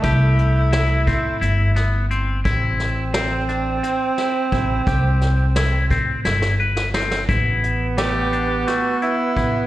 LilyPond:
<<
  \new Staff \with { instrumentName = "Tenor saxophone" } { \time 7/8 \key a \minor \tempo 4 = 87 e'2. r8 | r2. r8 | r2. r8 | r4 g'4 fis'8 e'4 | }
  \new Staff \with { instrumentName = "Clean electric guitar" } { \time 7/8 \key a \minor g'4 e'8 c'8 e'8 b8 c'8 | e'4 c'8 d'8 c'8 e'8 e'8 | g'4 e'8 c'8 e'8 b'8 c'8 | e'4 a8 d'8 a8 e'8 e'8 | }
  \new Staff \with { instrumentName = "Alto saxophone" } { \time 7/8 \key a \minor a2. r8 | c'2.~ c'8~ | c'2. r8 | b2.~ b8 | }
  \new Staff \with { instrumentName = "Upright bass" } { \clef bass \time 7/8 \key a \minor c,4. a,8 g,,4. | a,,2 r4 a,,8 | c,4. a,8 g,,4. | a,,2 r4 a,,8 | }
  \new DrumStaff \with { instrumentName = "Drums" } \drummode { \time 7/8 <hh bd>8 hh8 <hh sn>8 <hh bd>8 hh8 <hh sn>8 hh8 | <hh bd>8 <hh sn>8 <hh sn>8 hh8 hh8 <hh sn>8 <hh bd>8 | <hh bd>8 <hh sn>8 <hh sn>8 <hh bd>8 sn16 sn8 sn16 sn16 sn16 | <hh bd>8 hh8 <hh sn>8 hh8 <hh sn>8 hh8 <hh bd>8 | }
>>